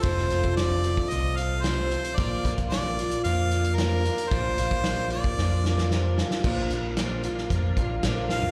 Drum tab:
CC |----------------|----------------|----------------|x---------------|
HH |x-xxx-x-x-x-x-xx|x-xxx-xxx-xxx-xx|x-xxx-x---------|--x-x-x-x-x-x---|
SD |-o--o-------o---|----o-------o---|----o---o-ooo-oo|----o--o----o-o-|
FT |----------------|----------------|----------------|---------------o|
BD |o--o---o--------|o-oo------------|o--o---o--------|o-------o-o-----|